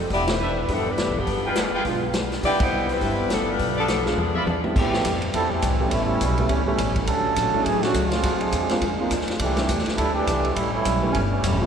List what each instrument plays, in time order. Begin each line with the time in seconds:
0.10 upright bass E1, steel-string acoustic guitar E3 B3 D4 G4, saxophone section B3 E4 G4 D5, kick, open hi-hat
0.28 saxophone section G3 D4 E4 C5, snare, ride
0.39 steel-string acoustic guitar E3 B3 D4 G4, trumpet section D4 G4 B4 E5
0.60 saxophone section G3 D4 E4 B4
0.68 upright bass G1, steel-string acoustic guitar E3 B3 D4 G4, saxophone section F3 B3 D4 A4, grand piano G3 B3 D4 E4, kick, open hi-hat
0.89 saxophone section G3 D4 E4 B4
0.98 steel-string acoustic guitar E3 B3 D4 G4, snare, closed hi-hat
1.07 upright bass B1
1.17 upright bass F#1, saxophone section F3 B3 D4 G4
1.26 upright bass G1, steel-string acoustic guitar G3 B3 F4 G#4, kick, open hi-hat
1.45 saxophone section D4 F4 B4, trumpet section F4 G#4 B4 G5
1.49 saxophone section G#3
1.56 steel-string acoustic guitar G3 B3 F4 G#4, snare, closed hi-hat
1.74 trumpet section F4 G#4 B4 G5
1.84 upright bass B1, steel-string acoustic guitar G3 B3 F4 G#4, grand piano G#3 B3 D4 F4, kick, open hi-hat
2.13 steel-string acoustic guitar G3 B3 F4 G#4, snare, closed hi-hat
2.32 snare, open hi-hat
2.43 upright bass C2, steel-string acoustic guitar C3 G3 B3 E4, grand piano G3 B3 D4 E4, saxophone section B3 E4 G4 D5, trumpet section C4 E4 B4 G5, kick, open hi-hat
2.60 saxophone section G3 B3 E4 C5, kick, ride
2.72 steel-string acoustic guitar C3 G3 B3 E4
2.89 saxophone section G3 C4 E4 B4, open hi-hat
3.01 upright bass G1, steel-string acoustic guitar C3 G3 B3 E4, grand piano G3 B3 D4 E4, kick, open hi-hat
3.30 steel-string acoustic guitar C3 G3 B3 E4, saxophone section F3 B3 D4 A4, snare, closed hi-hat
3.50 saxophone section A3 D4 F4 B4
3.59 upright bass B1, steel-string acoustic guitar B2 F3 A3 D4, kick, open hi-hat
3.77 saxophone section F3 B3 D4 A4, trumpet section F4 B4 D5 A5
3.87 steel-string acoustic guitar B2 F3 A3 D4, snare, closed hi-hat
4.06 saxophone section F3 B3 D4 G#4, grand piano G#3 B3 D4 F4, snare
4.16 upright bass E2, steel-string acoustic guitar E3 G#3 D4 F4, high tom
4.35 trumpet section F4 D5 E5 B5, high tom
4.46 upright bass E2, steel-string acoustic guitar E3 G#3 D4 F4, high tom
4.64 grand piano A2 G3 B3 C4 E4, mid tom
4.75 steel-string acoustic guitar A2 G3 C4 E4, upright bass A2, trombone section E3 A3 C4 G4, kick, crash
4.93 snare
5.04 upright bass F2, steel-string acoustic guitar A2 G3 C4 E4, kick, hi-hat pedal, ride
5.22 ride
5.33 upright bass E2, steel-string acoustic guitar A2 G3 C4 E4, trombone section G3 C4 E4 A4, kick, ride
5.51 trombone section E3 A3 C4 G4
5.62 upright bass C2, steel-string acoustic guitar A2 G3 C4 E4, kick, hi-hat pedal, ride
5.80 grand piano G3 A3 B3 C#4 E4
5.90 upright bass A1, steel-string acoustic guitar A2 G3, trombone section G3 A3 C#4 D#4 E4, kick, ride
5.94 steel-string acoustic guitar C#4 E4
6.06 trombone section G3 A3 C#4 E4
6.21 upright bass B1, steel-string acoustic guitar A2 G3 C#4 E4, kick, hi-hat pedal, ride
6.38 grand piano G3 A3 B3 C#4 E4, ride
6.49 upright bass C#2, steel-string acoustic guitar A2 G3 C#4, trombone section E3 G3 A3 C#4, kick, ride
6.53 steel-string acoustic guitar E4
6.65 trombone section E3 G3 A3 C#4, grand piano G3 A3 B3 C#4 G4
6.78 upright bass A1, steel-string acoustic guitar A2 G3 C#4 E4, kick, hi-hat pedal, ride
6.96 kick, ride
7.06 upright bass D2, steel-string acoustic guitar D3 F#3 A3, trombone section F#3 C#4 D4 A4, kick, ride
7.10 steel-string acoustic guitar C#4
7.36 upright bass A#1, steel-string acoustic guitar D3 F#3 A3 C#4, kick, hi-hat pedal, ride
7.54 grand piano F#3 A3 C#4 D4 E4, muted upright bass stroke
7.64 upright bass A1, steel-string acoustic guitar D3 F#3 A3 C#4, trombone section E3 A3 C#4 G#4, kick, ride
7.82 trombone section D3 A3 C#4 F#4, grand piano F#3 A3 C#4 D4 E4, snare, ride
7.94 upright bass C#2, steel-string acoustic guitar D3 F#3 A3 C#4, kick, hi-hat pedal, ride
8.11 trombone section G#3 C4 D4 F4, snare, ride
8.23 upright bass D2, steel-string acoustic guitar A#2 G#3 C4 D4, kick, ride
8.41 trombone section F3 C4 D4 G#4, ride
8.52 upright bass E2, steel-string acoustic guitar A#2 G#3 C4 D4, kick, hi-hat pedal, ride
8.69 grand piano G#3 A#3 C4 D4 F4, snare, ride
8.81 upright bass F2, steel-string acoustic guitar A#2 G#3 C4 D4, kick, ride
9.00 grand piano G#3 A#3 C4 D4 F4
9.11 upright bass D2, steel-string acoustic guitar A#2 G#3 C4 D4, kick, hi-hat pedal, ride
9.21 snare
9.28 snare, ride
9.39 upright bass C2, steel-string acoustic guitar C3 E3 A3 D4, trombone section E3 A3 D4 G4, kick, ride
9.56 grand piano G3 A3 C4 D4 E4, snare, ride
9.69 upright bass E2, steel-string acoustic guitar C3 E3 A3 D4, kick, hi-hat pedal, ride
9.78 snare
9.86 muted upright bass stroke, snare, ride
9.97 upright bass D2, steel-string acoustic guitar C3 E3 A3, trombone section G3 D4 E4 A4, kick, ride
10.01 steel-string acoustic guitar D4
10.13 trombone section E3 A3 D4 G4
10.27 upright bass C2, steel-string acoustic guitar C3 E3 A3 D4, kick, hi-hat pedal, ride
10.44 ride
10.54 upright bass A1, steel-string acoustic guitar A2 G3 C#4, trombone section G3 A3 C#4 E4, kick, ride
10.59 steel-string acoustic guitar E4
10.73 trombone section G3 A3 C#4 E4
10.85 upright bass B1, steel-string acoustic guitar A2 G3 C#4 E4, kick, hi-hat pedal, ride
11.02 grand piano G3 A3 B3 C#4 E4
11.12 upright bass G1, steel-string acoustic guitar A2 G3, trombone section E3 G3 A3 C#4, kick, ride
11.16 steel-string acoustic guitar C#4 E4
11.31 trombone section E3 G3 A3 C#4
11.43 upright bass E1, steel-string acoustic guitar A2 G3 C#4 E4, kick, hi-hat pedal, ride
11.61 grand piano F3 A3 C4 D4 E4